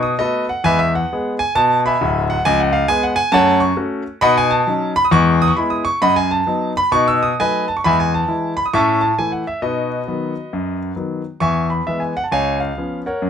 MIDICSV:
0, 0, Header, 1, 2, 480
1, 0, Start_track
1, 0, Key_signature, 4, "major"
1, 0, Tempo, 448766
1, 691, Time_signature, 4, 2, 24, 8
1, 14224, End_track
2, 0, Start_track
2, 0, Title_t, "Grand piano"
2, 0, Program_c, 0, 0
2, 0, Note_on_c, 0, 47, 96
2, 28, Note_on_c, 0, 87, 92
2, 135, Note_off_c, 0, 47, 0
2, 177, Note_off_c, 0, 87, 0
2, 201, Note_on_c, 0, 75, 98
2, 210, Note_on_c, 0, 59, 49
2, 212, Note_on_c, 0, 57, 50
2, 212, Note_on_c, 0, 71, 67
2, 219, Note_on_c, 0, 69, 68
2, 220, Note_on_c, 0, 66, 63
2, 471, Note_off_c, 0, 75, 0
2, 474, Note_off_c, 0, 59, 0
2, 476, Note_off_c, 0, 57, 0
2, 482, Note_off_c, 0, 66, 0
2, 502, Note_off_c, 0, 71, 0
2, 506, Note_off_c, 0, 69, 0
2, 528, Note_on_c, 0, 78, 87
2, 668, Note_off_c, 0, 78, 0
2, 685, Note_on_c, 0, 40, 87
2, 688, Note_on_c, 0, 80, 114
2, 698, Note_on_c, 0, 71, 86
2, 703, Note_on_c, 0, 76, 94
2, 710, Note_on_c, 0, 56, 54
2, 825, Note_off_c, 0, 80, 0
2, 829, Note_off_c, 0, 76, 0
2, 844, Note_off_c, 0, 71, 0
2, 845, Note_on_c, 0, 76, 98
2, 969, Note_off_c, 0, 56, 0
2, 983, Note_off_c, 0, 76, 0
2, 1019, Note_on_c, 0, 78, 86
2, 1095, Note_off_c, 0, 40, 0
2, 1206, Note_on_c, 0, 56, 57
2, 1206, Note_on_c, 0, 59, 61
2, 1210, Note_on_c, 0, 68, 56
2, 1417, Note_off_c, 0, 78, 0
2, 1460, Note_off_c, 0, 56, 0
2, 1460, Note_off_c, 0, 59, 0
2, 1463, Note_off_c, 0, 68, 0
2, 1489, Note_on_c, 0, 80, 110
2, 1629, Note_off_c, 0, 80, 0
2, 1661, Note_on_c, 0, 47, 93
2, 1663, Note_on_c, 0, 81, 127
2, 1923, Note_off_c, 0, 81, 0
2, 1986, Note_on_c, 0, 83, 96
2, 1998, Note_on_c, 0, 80, 70
2, 2000, Note_on_c, 0, 76, 76
2, 2064, Note_off_c, 0, 47, 0
2, 2152, Note_on_c, 0, 26, 97
2, 2152, Note_on_c, 0, 38, 90
2, 2384, Note_off_c, 0, 83, 0
2, 2428, Note_off_c, 0, 80, 0
2, 2429, Note_off_c, 0, 76, 0
2, 2458, Note_on_c, 0, 78, 99
2, 2527, Note_off_c, 0, 26, 0
2, 2527, Note_off_c, 0, 38, 0
2, 2594, Note_off_c, 0, 78, 0
2, 2623, Note_on_c, 0, 80, 122
2, 2630, Note_on_c, 0, 37, 109
2, 2642, Note_on_c, 0, 53, 59
2, 2773, Note_off_c, 0, 80, 0
2, 2780, Note_on_c, 0, 78, 85
2, 2897, Note_off_c, 0, 53, 0
2, 2916, Note_on_c, 0, 77, 100
2, 2929, Note_off_c, 0, 78, 0
2, 3029, Note_off_c, 0, 37, 0
2, 3061, Note_off_c, 0, 77, 0
2, 3085, Note_on_c, 0, 80, 127
2, 3094, Note_on_c, 0, 56, 70
2, 3098, Note_on_c, 0, 59, 69
2, 3099, Note_on_c, 0, 68, 62
2, 3243, Note_off_c, 0, 80, 0
2, 3243, Note_on_c, 0, 78, 94
2, 3356, Note_off_c, 0, 56, 0
2, 3359, Note_off_c, 0, 59, 0
2, 3360, Note_off_c, 0, 68, 0
2, 3378, Note_on_c, 0, 80, 126
2, 3400, Note_off_c, 0, 78, 0
2, 3530, Note_off_c, 0, 80, 0
2, 3550, Note_on_c, 0, 81, 127
2, 3552, Note_on_c, 0, 42, 111
2, 3570, Note_on_c, 0, 78, 122
2, 3572, Note_on_c, 0, 73, 118
2, 3585, Note_on_c, 0, 57, 68
2, 3824, Note_off_c, 0, 81, 0
2, 3845, Note_off_c, 0, 57, 0
2, 3854, Note_on_c, 0, 85, 102
2, 3860, Note_off_c, 0, 78, 0
2, 3861, Note_off_c, 0, 73, 0
2, 3967, Note_off_c, 0, 42, 0
2, 4008, Note_off_c, 0, 85, 0
2, 4030, Note_on_c, 0, 61, 60
2, 4031, Note_on_c, 0, 57, 62
2, 4034, Note_on_c, 0, 66, 68
2, 4299, Note_off_c, 0, 57, 0
2, 4299, Note_off_c, 0, 61, 0
2, 4302, Note_off_c, 0, 66, 0
2, 4506, Note_on_c, 0, 83, 124
2, 4513, Note_on_c, 0, 47, 108
2, 4518, Note_on_c, 0, 75, 112
2, 4523, Note_on_c, 0, 78, 106
2, 4528, Note_on_c, 0, 63, 66
2, 4651, Note_off_c, 0, 83, 0
2, 4671, Note_off_c, 0, 75, 0
2, 4674, Note_off_c, 0, 78, 0
2, 4680, Note_on_c, 0, 80, 117
2, 4791, Note_off_c, 0, 63, 0
2, 4819, Note_off_c, 0, 80, 0
2, 4820, Note_on_c, 0, 81, 98
2, 4927, Note_off_c, 0, 47, 0
2, 4995, Note_on_c, 0, 54, 66
2, 5002, Note_on_c, 0, 61, 62
2, 5002, Note_on_c, 0, 63, 62
2, 5233, Note_off_c, 0, 81, 0
2, 5262, Note_off_c, 0, 54, 0
2, 5268, Note_off_c, 0, 61, 0
2, 5268, Note_off_c, 0, 63, 0
2, 5305, Note_on_c, 0, 83, 127
2, 5396, Note_off_c, 0, 83, 0
2, 5398, Note_on_c, 0, 87, 92
2, 5470, Note_on_c, 0, 40, 124
2, 5479, Note_on_c, 0, 85, 127
2, 5484, Note_off_c, 0, 87, 0
2, 5496, Note_on_c, 0, 56, 77
2, 5748, Note_off_c, 0, 85, 0
2, 5758, Note_off_c, 0, 56, 0
2, 5794, Note_on_c, 0, 87, 122
2, 5858, Note_on_c, 0, 85, 94
2, 5880, Note_off_c, 0, 87, 0
2, 5885, Note_off_c, 0, 40, 0
2, 5954, Note_off_c, 0, 85, 0
2, 5954, Note_on_c, 0, 83, 79
2, 5959, Note_on_c, 0, 56, 62
2, 5962, Note_on_c, 0, 59, 51
2, 5971, Note_on_c, 0, 64, 67
2, 6099, Note_on_c, 0, 87, 90
2, 6116, Note_off_c, 0, 83, 0
2, 6225, Note_off_c, 0, 56, 0
2, 6227, Note_off_c, 0, 59, 0
2, 6234, Note_off_c, 0, 64, 0
2, 6253, Note_on_c, 0, 85, 118
2, 6267, Note_off_c, 0, 87, 0
2, 6406, Note_off_c, 0, 85, 0
2, 6436, Note_on_c, 0, 83, 119
2, 6438, Note_on_c, 0, 42, 96
2, 6445, Note_on_c, 0, 75, 94
2, 6449, Note_on_c, 0, 78, 90
2, 6577, Note_off_c, 0, 83, 0
2, 6592, Note_on_c, 0, 80, 106
2, 6594, Note_off_c, 0, 75, 0
2, 6597, Note_off_c, 0, 78, 0
2, 6734, Note_off_c, 0, 80, 0
2, 6750, Note_on_c, 0, 81, 91
2, 6850, Note_off_c, 0, 42, 0
2, 6916, Note_on_c, 0, 54, 62
2, 6921, Note_on_c, 0, 59, 51
2, 6922, Note_on_c, 0, 63, 68
2, 7159, Note_off_c, 0, 81, 0
2, 7183, Note_off_c, 0, 54, 0
2, 7186, Note_off_c, 0, 59, 0
2, 7187, Note_off_c, 0, 63, 0
2, 7242, Note_on_c, 0, 83, 127
2, 7383, Note_off_c, 0, 83, 0
2, 7398, Note_on_c, 0, 47, 104
2, 7402, Note_on_c, 0, 85, 127
2, 7415, Note_on_c, 0, 63, 77
2, 7560, Note_off_c, 0, 85, 0
2, 7569, Note_on_c, 0, 88, 102
2, 7676, Note_off_c, 0, 63, 0
2, 7722, Note_off_c, 0, 88, 0
2, 7729, Note_on_c, 0, 87, 101
2, 7809, Note_off_c, 0, 47, 0
2, 7866, Note_off_c, 0, 87, 0
2, 7913, Note_on_c, 0, 80, 114
2, 7915, Note_on_c, 0, 54, 51
2, 7917, Note_on_c, 0, 57, 50
2, 7918, Note_on_c, 0, 71, 84
2, 7919, Note_on_c, 0, 63, 49
2, 7923, Note_on_c, 0, 75, 85
2, 8167, Note_off_c, 0, 80, 0
2, 8171, Note_off_c, 0, 54, 0
2, 8172, Note_off_c, 0, 57, 0
2, 8174, Note_off_c, 0, 63, 0
2, 8194, Note_off_c, 0, 71, 0
2, 8196, Note_off_c, 0, 75, 0
2, 8214, Note_on_c, 0, 81, 82
2, 8290, Note_off_c, 0, 81, 0
2, 8307, Note_on_c, 0, 85, 81
2, 8378, Note_off_c, 0, 85, 0
2, 8390, Note_on_c, 0, 83, 113
2, 8400, Note_on_c, 0, 40, 89
2, 8408, Note_on_c, 0, 80, 93
2, 8414, Note_on_c, 0, 76, 84
2, 8426, Note_on_c, 0, 56, 55
2, 8515, Note_off_c, 0, 83, 0
2, 8537, Note_off_c, 0, 80, 0
2, 8540, Note_off_c, 0, 76, 0
2, 8556, Note_on_c, 0, 80, 98
2, 8673, Note_off_c, 0, 56, 0
2, 8679, Note_off_c, 0, 80, 0
2, 8709, Note_on_c, 0, 81, 86
2, 8793, Note_off_c, 0, 40, 0
2, 8859, Note_on_c, 0, 52, 46
2, 8860, Note_on_c, 0, 56, 46
2, 8862, Note_on_c, 0, 64, 60
2, 9101, Note_off_c, 0, 81, 0
2, 9119, Note_off_c, 0, 52, 0
2, 9120, Note_off_c, 0, 56, 0
2, 9121, Note_off_c, 0, 64, 0
2, 9163, Note_on_c, 0, 83, 107
2, 9244, Note_off_c, 0, 83, 0
2, 9257, Note_on_c, 0, 87, 78
2, 9333, Note_off_c, 0, 87, 0
2, 9343, Note_on_c, 0, 85, 116
2, 9345, Note_on_c, 0, 45, 98
2, 9356, Note_on_c, 0, 76, 100
2, 9360, Note_on_c, 0, 81, 92
2, 9364, Note_on_c, 0, 61, 58
2, 9601, Note_off_c, 0, 85, 0
2, 9617, Note_off_c, 0, 61, 0
2, 9622, Note_off_c, 0, 81, 0
2, 9632, Note_off_c, 0, 76, 0
2, 9638, Note_on_c, 0, 81, 82
2, 9744, Note_off_c, 0, 45, 0
2, 9780, Note_off_c, 0, 81, 0
2, 9821, Note_on_c, 0, 64, 49
2, 9822, Note_on_c, 0, 52, 41
2, 9824, Note_on_c, 0, 80, 91
2, 9827, Note_on_c, 0, 57, 49
2, 9952, Note_off_c, 0, 80, 0
2, 9970, Note_on_c, 0, 78, 68
2, 10081, Note_off_c, 0, 52, 0
2, 10081, Note_off_c, 0, 64, 0
2, 10085, Note_off_c, 0, 57, 0
2, 10103, Note_off_c, 0, 78, 0
2, 10133, Note_on_c, 0, 76, 77
2, 10265, Note_off_c, 0, 76, 0
2, 10292, Note_on_c, 0, 47, 74
2, 10292, Note_on_c, 0, 75, 82
2, 10300, Note_on_c, 0, 66, 69
2, 10300, Note_on_c, 0, 71, 59
2, 10313, Note_on_c, 0, 63, 57
2, 10569, Note_off_c, 0, 63, 0
2, 10697, Note_off_c, 0, 47, 0
2, 10778, Note_on_c, 0, 51, 52
2, 10781, Note_on_c, 0, 54, 45
2, 10783, Note_on_c, 0, 59, 55
2, 11038, Note_off_c, 0, 51, 0
2, 11041, Note_off_c, 0, 54, 0
2, 11042, Note_off_c, 0, 59, 0
2, 11263, Note_on_c, 0, 42, 79
2, 11513, Note_off_c, 0, 75, 0
2, 11664, Note_off_c, 0, 42, 0
2, 11690, Note_off_c, 0, 66, 0
2, 11690, Note_off_c, 0, 71, 0
2, 11724, Note_on_c, 0, 54, 46
2, 11726, Note_on_c, 0, 59, 41
2, 11727, Note_on_c, 0, 51, 46
2, 11988, Note_off_c, 0, 54, 0
2, 11990, Note_off_c, 0, 59, 0
2, 11991, Note_off_c, 0, 51, 0
2, 12198, Note_on_c, 0, 85, 103
2, 12203, Note_on_c, 0, 40, 75
2, 12211, Note_on_c, 0, 76, 72
2, 12212, Note_on_c, 0, 80, 75
2, 12467, Note_off_c, 0, 85, 0
2, 12499, Note_off_c, 0, 76, 0
2, 12500, Note_off_c, 0, 80, 0
2, 12515, Note_on_c, 0, 83, 66
2, 12613, Note_off_c, 0, 40, 0
2, 12659, Note_off_c, 0, 83, 0
2, 12694, Note_on_c, 0, 76, 78
2, 12703, Note_on_c, 0, 52, 52
2, 12708, Note_on_c, 0, 56, 44
2, 12712, Note_on_c, 0, 59, 50
2, 12834, Note_on_c, 0, 80, 62
2, 12846, Note_off_c, 0, 76, 0
2, 12963, Note_off_c, 0, 52, 0
2, 12966, Note_off_c, 0, 56, 0
2, 12969, Note_off_c, 0, 59, 0
2, 12995, Note_off_c, 0, 80, 0
2, 13014, Note_on_c, 0, 78, 93
2, 13089, Note_on_c, 0, 81, 60
2, 13090, Note_off_c, 0, 78, 0
2, 13170, Note_off_c, 0, 81, 0
2, 13173, Note_on_c, 0, 37, 86
2, 13180, Note_on_c, 0, 80, 110
2, 13186, Note_on_c, 0, 73, 73
2, 13189, Note_on_c, 0, 77, 72
2, 13446, Note_off_c, 0, 80, 0
2, 13462, Note_off_c, 0, 77, 0
2, 13475, Note_off_c, 0, 73, 0
2, 13478, Note_on_c, 0, 77, 72
2, 13579, Note_off_c, 0, 37, 0
2, 13661, Note_on_c, 0, 53, 37
2, 13671, Note_on_c, 0, 59, 38
2, 13673, Note_on_c, 0, 61, 45
2, 13884, Note_off_c, 0, 77, 0
2, 13922, Note_off_c, 0, 53, 0
2, 13929, Note_off_c, 0, 59, 0
2, 13931, Note_off_c, 0, 61, 0
2, 13971, Note_on_c, 0, 78, 62
2, 13975, Note_on_c, 0, 70, 62
2, 13979, Note_on_c, 0, 73, 66
2, 14140, Note_on_c, 0, 42, 78
2, 14224, Note_off_c, 0, 42, 0
2, 14224, Note_off_c, 0, 70, 0
2, 14224, Note_off_c, 0, 73, 0
2, 14224, Note_off_c, 0, 78, 0
2, 14224, End_track
0, 0, End_of_file